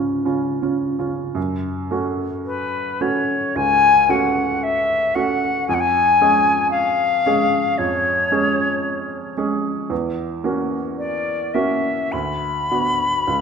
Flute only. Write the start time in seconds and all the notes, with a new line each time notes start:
2.46 B4
3.01 C#5
3.56 G#5
4.10 F#5
4.63 E5
5.15 F#5
5.68 G#5
5.74 F#5
5.80 G#5
6.71 F5
7.78 C#5
10.98 D5
11.54 E5
12.12 B5